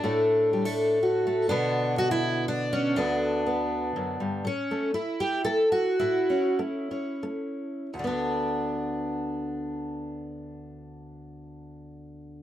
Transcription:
0.00 1.50 A2 medium
0.00 1.02 D4 medium
0.04 0.53 A3 soft
0.53 0.65 G3 soft
0.65 1.25 A3 soft
1.03 1.49 F#4 soft
1.27 1.48 A3 soft
1.49 2.94 B2 medium
1.49 2.96 D3 medium
1.49 2.95 B3 medium
1.49 1.98 D4 medium
1.98 2.11 F#4 loud
2.11 2.48 E4 loud
2.48 2.95 D4 medium
2.73 2.97 C#4 medium
2.96 3.96 D2 medium
2.96 4.46 D3 soft
2.96 3.45 B3 soft
2.96 4.45 D4 medium
3.46 4.43 B3 soft
3.96 4.20 F#2 medium
4.20 4.45 G2 medium
4.45 4.90 A2 medium
4.45 4.94 C#4 medium
4.71 4.95 A3 soft
4.94 5.41 A3 medium
4.94 5.72 E4 medium
5.20 5.44 G4 medium
5.45 5.94 A3 medium
5.45 5.72 A4 medium
5.72 6.57 F#4 medium
6.00 6.52 A2 medium
6.00 7.92 E4 medium
6.30 6.89 C#4 soft
6.59 7.15 A3 medium
6.91 7.89 C#4 soft
7.23 7.86 A3 soft
7.94 12.41 D2 medium
7.99 12.43 D3 soft
8.04 12.43 B3 soft
8.04 12.43 D4 medium

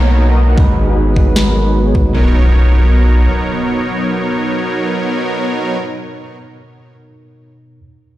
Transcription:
0.00 0.56 B1 medium
0.00 0.59 B2 medium
0.00 0.60 A#3 medium
0.00 0.57 D#4 medium
0.00 0.59 C#5 medium
0.00 downlifter medium
0.09 0.26 F#3 medium
0.09 0.26 B3 medium
0.09 0.26 D#4 medium
0.09 0.26 A#4 medium
0.09 0.26 C#5 loud
0.28 0.41 F#3 medium
0.28 0.41 B3 medium
0.28 0.41 D#4 medium
0.28 0.41 A#4 medium
0.28 0.41 D#5 loud
0.48 0.55 F#3 medium
0.48 0.55 B3 medium
0.48 0.55 D#4 medium
0.48 0.55 A#4 medium
0.48 0.55 F#5 medium
0.56 2.13 G#1 medium
0.56 0.85 F#3 medium
0.56 1.13 G#3 medium
0.56 0.85 B3 medium
0.56 1.14 D#4 medium
0.56 0.85 D#4 medium
0.56 1.14 F#4 medium
0.56 0.85 G#4 medium
0.56 0.85 B4 medium
0.56 kick loud
0.60 1.15 B4 medium
0.87 1.14 F#3 medium
0.87 1.14 B3 medium
0.87 1.14 D#4 medium
0.87 1.14 G#4 medium
0.87 1.14 B4 medium
1.14 1.44 F#3 medium
1.14 2.11 G#3 medium
1.14 1.44 B3 medium
1.14 2.12 D#4 medium
1.14 1.44 D#4 medium
1.14 2.12 F#4 medium
1.14 1.44 G#4 medium
1.14 1.44 B4 loud
1.14 kick medium
1.18 2.13 B4 medium
1.36 snare loud
1.46 1.63 F#3 medium
1.46 1.63 B3 medium
1.46 1.63 D#4 medium
1.46 1.63 G#4 medium
1.46 1.63 A#4 medium
1.65 1.83 F#3 medium
1.65 1.83 B3 medium
1.65 1.83 D#4 medium
1.65 1.83 G#4 medium
1.65 1.83 B4 medium
1.85 1.98 F#3 medium
1.85 1.98 B3 medium
1.85 1.98 D#4 medium
1.85 1.98 G#4 medium
1.85 1.98 C#5 loud
1.95 kick medium
2.05 2.12 F#3 medium
2.05 2.12 B3 medium
2.05 2.12 D#4 medium
2.05 2.12 G#4 medium
2.05 2.12 D#5 medium
2.11 3.28 B1 medium
2.11 5.74 B2 medium
2.11 5.77 F#3 medium
2.11 5.77 B3 medium
2.11 5.77 D#4 medium
2.11 5.76 A#4 medium
2.11 5.77 A#4 medium
2.11 5.77 C#5 medium
2.11 impact medium
2.15 5.78 D#4 medium
2.15 5.80 C#5 medium

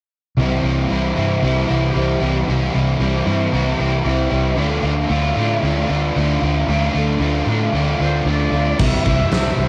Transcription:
0.37 0.58 C2 medium
0.37 1.42 C3 medium
0.37 0.89 E3 medium
0.37 0.66 G3 medium
0.37 0.64 C4 medium
0.41 0.63 E4 medium
0.63 0.85 C2 medium
0.63 0.91 G3 soft
0.63 0.92 C4 medium
0.63 0.93 E4 medium
0.89 1.11 C2 medium
0.89 1.43 E3 medium
0.89 1.19 G3 medium
0.89 1.17 C4 medium
0.89 1.16 E4 medium
1.16 1.38 G2 medium
1.16 1.43 G3 medium
1.16 1.44 C4 medium
1.16 1.45 E4 medium
1.42 1.64 C2 medium
1.42 1.96 C3 medium
1.42 1.93 E3 medium
1.42 1.69 G3 medium
1.42 1.69 C4 medium
1.42 1.66 E4 medium
1.68 1.91 C2 medium
1.68 1.94 G3 medium
1.68 1.97 C4 medium
1.68 1.96 E4 medium
1.95 2.16 C2 medium
1.95 2.47 E3 medium
1.95 2.22 G3 medium
1.95 2.22 C4 medium
1.95 2.19 E4 medium
2.21 2.43 C2 medium
2.21 2.48 G3 medium
2.21 2.49 C4 medium
2.21 2.49 E4 medium
2.47 2.69 C2 medium
2.47 3.00 C3 medium
2.47 2.98 E3 medium
2.47 2.75 G3 medium
2.47 2.74 C4 medium
2.47 2.72 E4 loud
2.73 2.96 C2 medium
2.73 2.99 G3 medium
2.73 3.01 C4 medium
2.73 3.01 E4 medium
2.99 3.21 C2 medium
2.99 3.52 E3 medium
2.99 3.29 G3 medium
2.99 3.28 C4 medium
2.99 3.25 E4 medium
3.26 3.47 G2 medium
3.26 3.54 C4 medium
3.26 3.54 E4 medium
3.30 3.53 G3 medium
3.52 3.74 C2 medium
3.52 4.05 C3 medium
3.52 4.03 E3 medium
3.52 3.80 G3 medium
3.52 3.80 C4 medium
3.52 3.77 E4 medium
3.79 4.00 C2 medium
3.79 4.04 G3 medium
3.79 4.06 C4 medium
3.79 4.06 E4 medium
4.04 4.26 C2 medium
4.04 4.55 E3 medium
4.04 4.33 G3 medium
4.04 4.33 C4 medium
4.04 4.30 E4 medium
4.31 4.53 C2 medium
4.31 4.57 G3 medium
4.31 4.58 C4 medium
4.31 4.56 E4 medium
4.56 4.78 D2 medium
4.56 5.08 D3 medium
4.56 4.85 A3 medium
4.56 4.84 D4 medium
4.56 4.82 F4 medium
4.82 5.04 D2 medium
4.82 5.09 A3 medium
4.82 5.10 D4 medium
4.82 5.11 F4 medium
5.08 5.31 D2 medium
5.08 5.62 D3 medium
5.08 5.38 A3 medium
5.08 5.37 D4 medium
5.08 5.35 F4 medium
5.36 5.57 A2 medium
5.36 5.62 A3 medium
5.36 5.63 D4 medium
5.36 5.64 F4 medium
5.62 5.84 D2 medium
5.62 6.14 D3 medium
5.62 5.89 A3 medium
5.62 5.88 D4 medium
5.62 5.86 F4 medium
5.87 6.10 D2 medium
5.87 6.15 A3 medium
5.87 6.16 D4 medium
5.87 6.17 F4 medium
6.15 6.37 D2 medium
6.15 6.66 D3 medium
6.15 6.43 A3 medium
6.15 6.42 D4 medium
6.15 6.40 F4 medium
6.41 6.63 D2 medium
6.41 6.68 A3 medium
6.41 6.69 D4 medium
6.41 6.70 F4 medium
6.67 6.89 D2 medium
6.67 7.19 D3 medium
6.67 6.96 A3 medium
6.67 6.95 D4 medium
6.67 6.93 F4 loud
6.94 7.15 D2 medium
6.94 7.21 A3 medium
6.94 7.22 D4 medium
6.94 7.23 F4 medium
7.19 7.41 D2 medium
7.19 7.72 D3 medium
7.19 7.49 A3 medium
7.19 7.48 D4 medium
7.24 7.46 F4 medium
7.46 7.67 A2 medium
7.46 7.73 A3 medium
7.46 7.74 D4 medium
7.46 7.75 F4 medium
7.73 7.94 D2 medium
7.73 8.25 D3 medium
7.73 8.03 A3 medium
7.73 8.02 D4 medium
7.73 8.00 F4 loud
8.00 8.21 D2 medium
8.00 8.27 D4 medium
8.00 8.28 F4 medium
8.00 8.29 C5 medium
8.04 8.26 A3 medium
8.25 8.46 D2 medium
8.25 8.77 D3 medium
8.25 8.55 A3 medium
8.25 8.53 D4 medium
8.25 8.51 F4 medium
8.25 8.81 D5 loud
8.51 8.73 D2 medium
8.51 8.78 D4 medium
8.51 8.77 F4 medium
8.56 8.79 A3 medium
8.79 8.98 C2 medium
8.79 9.69 C3 medium
8.79 9.32 E3 medium
8.79 9.07 G3 medium
8.79 9.06 C4 medium
8.79 9.04 E4 medium
8.79 9.69 E5 loud
8.79 kick loud
8.79 crash medium
9.04 9.24 C2 medium
9.04 9.33 G3 medium
9.04 9.34 C4 medium
9.04 9.35 E4 medium
9.04 kick medium
9.30 9.50 C2 medium
9.30 9.69 E3 medium
9.30 9.69 G3 medium
9.30 9.69 C4 medium
9.30 snare loud
9.30 open hi-hat soft
9.35 9.69 E4 medium
9.57 9.69 C2 medium

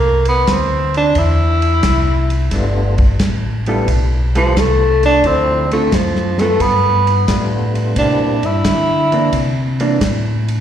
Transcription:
0.00 0.46 C2 medium
0.00 0.27 A#3 medium
0.25 0.52 B3 medium
0.25 ride soft
0.47 1.14 D2 medium
0.47 0.96 C4 medium
0.47 kick soft
0.47 snare medium
0.47 hi-hat pedal medium
0.47 ride medium
0.94 1.20 D4 medium
0.94 ride soft
1.15 1.82 E2 medium
1.15 2.32 E4 medium
1.15 kick soft
1.15 ride medium
1.62 ride soft
1.83 2.50 C2 medium
1.83 kick soft
1.83 snare medium
1.83 hi-hat pedal medium
1.83 ride medium
2.30 ride soft
2.51 3.18 G1 medium
2.51 2.95 G3 medium
2.51 2.95 A3 medium
2.51 2.95 B3 medium
2.51 2.95 D4 medium
2.51 2.95 F4 medium
2.51 kick soft
2.51 snare soft
2.51 ride medium
2.98 kick medium
2.98 ride soft
3.19 3.86 A1 medium
3.19 kick soft
3.19 snare medium
3.19 hi-hat pedal medium
3.19 ride medium
3.66 3.86 G3 medium
3.66 3.86 A3 medium
3.66 3.87 B3 medium
3.66 3.87 D4 medium
3.66 3.87 E4 medium
3.66 3.87 F4 medium
3.66 3.87 A4 medium
3.66 ride soft
3.88 4.54 B1 medium
3.88 kick soft
3.88 ride medium
4.35 4.61 F3 medium
4.35 4.54 G3 medium
4.35 4.55 B3 medium
4.35 4.55 F4 medium
4.35 4.55 A4 medium
4.35 ride soft
4.56 5.23 C2 medium
4.56 5.05 A3 medium
4.56 kick soft
4.56 snare medium
4.56 hi-hat pedal medium
4.56 ride medium
5.03 5.28 D4 loud
5.03 ride soft
5.24 5.91 D2 medium
5.24 5.67 F3 medium
5.24 5.67 A3 medium
5.24 5.67 C4 medium
5.24 5.72 C4 medium
5.24 5.67 D4 medium
5.24 5.67 E4 medium
5.24 kick soft
5.24 ride medium
5.71 5.91 D3 medium
5.71 5.97 A3 medium
5.71 5.91 A3 medium
5.71 5.92 C4 medium
5.71 5.91 F4 medium
5.71 ride soft
5.92 6.59 F#2 medium
5.92 6.41 F3 medium
5.92 kick soft
5.92 snare medium
5.92 hi-hat pedal medium
5.92 ride medium
6.16 snare soft
6.38 6.63 A3 medium
6.38 6.59 B3 medium
6.38 6.60 F4 medium
6.38 snare soft
6.38 ride soft
6.42 6.60 A4 medium
6.60 7.27 G2 medium
6.60 7.29 B3 medium
6.60 kick soft
6.60 ride medium
7.07 ride soft
7.28 7.94 A2 medium
7.28 7.97 G3 medium
7.28 7.97 A3 soft
7.28 7.97 B3 soft
7.28 7.97 D4 soft
7.28 7.98 F4 medium
7.28 kick soft
7.28 snare medium
7.28 hi-hat pedal medium
7.28 ride medium
7.75 ride soft
7.96 8.19 C3 medium
7.96 8.40 G3 medium
7.96 8.40 A#3 medium
7.96 8.40 C4 medium
7.96 8.47 D4 medium
7.96 8.40 D4 medium
7.96 8.40 E4 medium
7.96 kick soft
7.96 ride medium
8.20 8.43 A#2 medium
8.42 8.63 G2 medium
8.42 9.34 E4 loud
8.42 ride soft
8.64 9.31 D3 medium
8.64 kick soft
8.64 snare medium
8.64 hi-hat pedal medium
8.64 ride medium
9.12 9.31 E3 medium
9.12 9.32 A#3 medium
9.12 9.32 D4 medium
9.12 ride soft
9.33 9.99 C3 medium
9.33 kick soft
9.33 ride medium
9.80 9.99 E3 medium
9.80 9.99 A#3 medium
9.80 10.00 D4 medium
9.80 ride soft
10.01 10.61 A2 medium
10.01 kick soft
10.01 snare medium
10.01 hi-hat pedal medium
10.01 ride medium
10.48 ride soft

